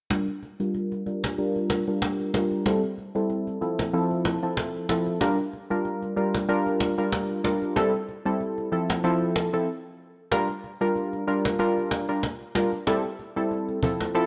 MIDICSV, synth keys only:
0, 0, Header, 1, 2, 480
1, 0, Start_track
1, 0, Tempo, 638298
1, 79, Time_signature, 4, 2, 24, 8
1, 10726, End_track
2, 0, Start_track
2, 0, Title_t, "Synth keys"
2, 0, Program_c, 0, 88
2, 77, Note_on_c, 0, 55, 84
2, 79, Note_on_c, 0, 62, 79
2, 80, Note_on_c, 0, 65, 76
2, 82, Note_on_c, 0, 70, 96
2, 196, Note_off_c, 0, 55, 0
2, 197, Note_off_c, 0, 62, 0
2, 198, Note_off_c, 0, 65, 0
2, 199, Note_off_c, 0, 70, 0
2, 449, Note_on_c, 0, 55, 72
2, 450, Note_on_c, 0, 62, 66
2, 452, Note_on_c, 0, 65, 66
2, 453, Note_on_c, 0, 70, 75
2, 772, Note_off_c, 0, 55, 0
2, 773, Note_off_c, 0, 62, 0
2, 774, Note_off_c, 0, 65, 0
2, 774, Note_off_c, 0, 70, 0
2, 796, Note_on_c, 0, 55, 66
2, 799, Note_on_c, 0, 62, 65
2, 800, Note_on_c, 0, 65, 62
2, 801, Note_on_c, 0, 70, 77
2, 1020, Note_off_c, 0, 55, 0
2, 1022, Note_off_c, 0, 62, 0
2, 1022, Note_off_c, 0, 65, 0
2, 1023, Note_off_c, 0, 70, 0
2, 1038, Note_on_c, 0, 55, 84
2, 1039, Note_on_c, 0, 62, 82
2, 1041, Note_on_c, 0, 65, 78
2, 1042, Note_on_c, 0, 70, 95
2, 1379, Note_off_c, 0, 55, 0
2, 1379, Note_off_c, 0, 62, 0
2, 1380, Note_off_c, 0, 65, 0
2, 1381, Note_off_c, 0, 70, 0
2, 1410, Note_on_c, 0, 55, 69
2, 1411, Note_on_c, 0, 62, 66
2, 1413, Note_on_c, 0, 65, 63
2, 1414, Note_on_c, 0, 70, 76
2, 1732, Note_off_c, 0, 55, 0
2, 1733, Note_off_c, 0, 62, 0
2, 1734, Note_off_c, 0, 65, 0
2, 1735, Note_off_c, 0, 70, 0
2, 1757, Note_on_c, 0, 55, 69
2, 1758, Note_on_c, 0, 62, 63
2, 1760, Note_on_c, 0, 65, 62
2, 1761, Note_on_c, 0, 70, 80
2, 1981, Note_off_c, 0, 55, 0
2, 1981, Note_off_c, 0, 62, 0
2, 1982, Note_off_c, 0, 65, 0
2, 1983, Note_off_c, 0, 70, 0
2, 1997, Note_on_c, 0, 55, 84
2, 1999, Note_on_c, 0, 60, 79
2, 2000, Note_on_c, 0, 64, 77
2, 2002, Note_on_c, 0, 69, 90
2, 2116, Note_off_c, 0, 55, 0
2, 2117, Note_off_c, 0, 60, 0
2, 2118, Note_off_c, 0, 64, 0
2, 2119, Note_off_c, 0, 69, 0
2, 2368, Note_on_c, 0, 55, 71
2, 2370, Note_on_c, 0, 60, 68
2, 2372, Note_on_c, 0, 64, 67
2, 2373, Note_on_c, 0, 69, 81
2, 2692, Note_off_c, 0, 55, 0
2, 2693, Note_off_c, 0, 60, 0
2, 2694, Note_off_c, 0, 64, 0
2, 2694, Note_off_c, 0, 69, 0
2, 2717, Note_on_c, 0, 53, 72
2, 2718, Note_on_c, 0, 60, 62
2, 2720, Note_on_c, 0, 64, 67
2, 2722, Note_on_c, 0, 69, 77
2, 2940, Note_off_c, 0, 53, 0
2, 2941, Note_off_c, 0, 60, 0
2, 2942, Note_off_c, 0, 64, 0
2, 2943, Note_off_c, 0, 69, 0
2, 2957, Note_on_c, 0, 53, 89
2, 2959, Note_on_c, 0, 60, 79
2, 2960, Note_on_c, 0, 64, 79
2, 2962, Note_on_c, 0, 69, 95
2, 3298, Note_off_c, 0, 53, 0
2, 3299, Note_off_c, 0, 60, 0
2, 3300, Note_off_c, 0, 64, 0
2, 3301, Note_off_c, 0, 69, 0
2, 3329, Note_on_c, 0, 53, 69
2, 3330, Note_on_c, 0, 60, 65
2, 3332, Note_on_c, 0, 64, 65
2, 3333, Note_on_c, 0, 69, 80
2, 3652, Note_off_c, 0, 53, 0
2, 3653, Note_off_c, 0, 60, 0
2, 3653, Note_off_c, 0, 64, 0
2, 3654, Note_off_c, 0, 69, 0
2, 3676, Note_on_c, 0, 53, 72
2, 3678, Note_on_c, 0, 60, 64
2, 3679, Note_on_c, 0, 64, 66
2, 3681, Note_on_c, 0, 69, 81
2, 3900, Note_off_c, 0, 53, 0
2, 3901, Note_off_c, 0, 60, 0
2, 3902, Note_off_c, 0, 64, 0
2, 3903, Note_off_c, 0, 69, 0
2, 3915, Note_on_c, 0, 55, 88
2, 3916, Note_on_c, 0, 62, 81
2, 3918, Note_on_c, 0, 65, 81
2, 3919, Note_on_c, 0, 70, 97
2, 4035, Note_off_c, 0, 55, 0
2, 4036, Note_off_c, 0, 62, 0
2, 4037, Note_off_c, 0, 65, 0
2, 4038, Note_off_c, 0, 70, 0
2, 4289, Note_on_c, 0, 55, 74
2, 4290, Note_on_c, 0, 62, 67
2, 4292, Note_on_c, 0, 65, 65
2, 4293, Note_on_c, 0, 70, 82
2, 4612, Note_off_c, 0, 55, 0
2, 4613, Note_off_c, 0, 62, 0
2, 4613, Note_off_c, 0, 65, 0
2, 4614, Note_off_c, 0, 70, 0
2, 4636, Note_on_c, 0, 55, 74
2, 4638, Note_on_c, 0, 62, 65
2, 4639, Note_on_c, 0, 65, 66
2, 4641, Note_on_c, 0, 70, 76
2, 4860, Note_off_c, 0, 55, 0
2, 4861, Note_off_c, 0, 62, 0
2, 4862, Note_off_c, 0, 65, 0
2, 4863, Note_off_c, 0, 70, 0
2, 4877, Note_on_c, 0, 55, 88
2, 4878, Note_on_c, 0, 62, 80
2, 4880, Note_on_c, 0, 65, 84
2, 4881, Note_on_c, 0, 70, 98
2, 5218, Note_off_c, 0, 55, 0
2, 5219, Note_off_c, 0, 62, 0
2, 5220, Note_off_c, 0, 65, 0
2, 5221, Note_off_c, 0, 70, 0
2, 5248, Note_on_c, 0, 55, 73
2, 5249, Note_on_c, 0, 62, 65
2, 5251, Note_on_c, 0, 65, 66
2, 5253, Note_on_c, 0, 70, 81
2, 5571, Note_off_c, 0, 55, 0
2, 5572, Note_off_c, 0, 62, 0
2, 5573, Note_off_c, 0, 65, 0
2, 5574, Note_off_c, 0, 70, 0
2, 5595, Note_on_c, 0, 55, 72
2, 5596, Note_on_c, 0, 62, 69
2, 5598, Note_on_c, 0, 65, 66
2, 5600, Note_on_c, 0, 70, 81
2, 5820, Note_off_c, 0, 55, 0
2, 5820, Note_off_c, 0, 62, 0
2, 5821, Note_off_c, 0, 65, 0
2, 5822, Note_off_c, 0, 70, 0
2, 5834, Note_on_c, 0, 55, 88
2, 5836, Note_on_c, 0, 60, 79
2, 5838, Note_on_c, 0, 64, 81
2, 5840, Note_on_c, 0, 69, 101
2, 5955, Note_off_c, 0, 55, 0
2, 5956, Note_off_c, 0, 60, 0
2, 5957, Note_off_c, 0, 64, 0
2, 5958, Note_off_c, 0, 69, 0
2, 6207, Note_on_c, 0, 55, 73
2, 6209, Note_on_c, 0, 60, 66
2, 6211, Note_on_c, 0, 64, 65
2, 6212, Note_on_c, 0, 69, 78
2, 6531, Note_off_c, 0, 55, 0
2, 6532, Note_off_c, 0, 60, 0
2, 6533, Note_off_c, 0, 64, 0
2, 6533, Note_off_c, 0, 69, 0
2, 6556, Note_on_c, 0, 53, 73
2, 6558, Note_on_c, 0, 60, 63
2, 6559, Note_on_c, 0, 64, 67
2, 6561, Note_on_c, 0, 69, 77
2, 6780, Note_off_c, 0, 53, 0
2, 6781, Note_off_c, 0, 60, 0
2, 6782, Note_off_c, 0, 64, 0
2, 6783, Note_off_c, 0, 69, 0
2, 6797, Note_on_c, 0, 53, 93
2, 6798, Note_on_c, 0, 60, 79
2, 6799, Note_on_c, 0, 64, 81
2, 6801, Note_on_c, 0, 69, 93
2, 7138, Note_off_c, 0, 53, 0
2, 7139, Note_off_c, 0, 60, 0
2, 7139, Note_off_c, 0, 64, 0
2, 7140, Note_off_c, 0, 69, 0
2, 7167, Note_on_c, 0, 53, 72
2, 7169, Note_on_c, 0, 60, 68
2, 7170, Note_on_c, 0, 64, 66
2, 7172, Note_on_c, 0, 69, 82
2, 7277, Note_off_c, 0, 53, 0
2, 7278, Note_off_c, 0, 60, 0
2, 7279, Note_off_c, 0, 64, 0
2, 7279, Note_off_c, 0, 69, 0
2, 7756, Note_on_c, 0, 55, 88
2, 7758, Note_on_c, 0, 62, 80
2, 7760, Note_on_c, 0, 65, 82
2, 7761, Note_on_c, 0, 70, 95
2, 7876, Note_off_c, 0, 55, 0
2, 7877, Note_off_c, 0, 62, 0
2, 7878, Note_off_c, 0, 65, 0
2, 7878, Note_off_c, 0, 70, 0
2, 8128, Note_on_c, 0, 55, 74
2, 8129, Note_on_c, 0, 62, 65
2, 8131, Note_on_c, 0, 65, 67
2, 8133, Note_on_c, 0, 70, 78
2, 8452, Note_off_c, 0, 55, 0
2, 8452, Note_off_c, 0, 62, 0
2, 8453, Note_off_c, 0, 65, 0
2, 8454, Note_off_c, 0, 70, 0
2, 8477, Note_on_c, 0, 55, 70
2, 8478, Note_on_c, 0, 62, 64
2, 8480, Note_on_c, 0, 65, 69
2, 8481, Note_on_c, 0, 70, 81
2, 8700, Note_off_c, 0, 55, 0
2, 8701, Note_off_c, 0, 62, 0
2, 8702, Note_off_c, 0, 65, 0
2, 8703, Note_off_c, 0, 70, 0
2, 8716, Note_on_c, 0, 55, 89
2, 8718, Note_on_c, 0, 62, 83
2, 8719, Note_on_c, 0, 65, 84
2, 8721, Note_on_c, 0, 70, 97
2, 9058, Note_off_c, 0, 55, 0
2, 9059, Note_off_c, 0, 62, 0
2, 9059, Note_off_c, 0, 65, 0
2, 9061, Note_off_c, 0, 70, 0
2, 9088, Note_on_c, 0, 55, 70
2, 9089, Note_on_c, 0, 62, 67
2, 9091, Note_on_c, 0, 65, 65
2, 9092, Note_on_c, 0, 70, 77
2, 9186, Note_off_c, 0, 55, 0
2, 9187, Note_off_c, 0, 62, 0
2, 9188, Note_off_c, 0, 65, 0
2, 9189, Note_off_c, 0, 70, 0
2, 9438, Note_on_c, 0, 55, 72
2, 9439, Note_on_c, 0, 62, 69
2, 9440, Note_on_c, 0, 65, 67
2, 9442, Note_on_c, 0, 70, 79
2, 9557, Note_off_c, 0, 55, 0
2, 9557, Note_off_c, 0, 62, 0
2, 9558, Note_off_c, 0, 65, 0
2, 9559, Note_off_c, 0, 70, 0
2, 9677, Note_on_c, 0, 55, 91
2, 9679, Note_on_c, 0, 60, 82
2, 9680, Note_on_c, 0, 64, 83
2, 9682, Note_on_c, 0, 69, 92
2, 9796, Note_off_c, 0, 55, 0
2, 9797, Note_off_c, 0, 60, 0
2, 9798, Note_off_c, 0, 64, 0
2, 9799, Note_off_c, 0, 69, 0
2, 10049, Note_on_c, 0, 55, 73
2, 10051, Note_on_c, 0, 60, 65
2, 10052, Note_on_c, 0, 64, 68
2, 10053, Note_on_c, 0, 69, 79
2, 10372, Note_off_c, 0, 55, 0
2, 10373, Note_off_c, 0, 60, 0
2, 10373, Note_off_c, 0, 64, 0
2, 10374, Note_off_c, 0, 69, 0
2, 10398, Note_on_c, 0, 53, 72
2, 10399, Note_on_c, 0, 60, 67
2, 10400, Note_on_c, 0, 64, 65
2, 10402, Note_on_c, 0, 69, 80
2, 10621, Note_off_c, 0, 53, 0
2, 10622, Note_off_c, 0, 60, 0
2, 10622, Note_off_c, 0, 64, 0
2, 10623, Note_off_c, 0, 69, 0
2, 10637, Note_on_c, 0, 53, 89
2, 10639, Note_on_c, 0, 60, 78
2, 10641, Note_on_c, 0, 64, 83
2, 10642, Note_on_c, 0, 69, 99
2, 10726, Note_off_c, 0, 53, 0
2, 10726, Note_off_c, 0, 60, 0
2, 10726, Note_off_c, 0, 64, 0
2, 10726, Note_off_c, 0, 69, 0
2, 10726, End_track
0, 0, End_of_file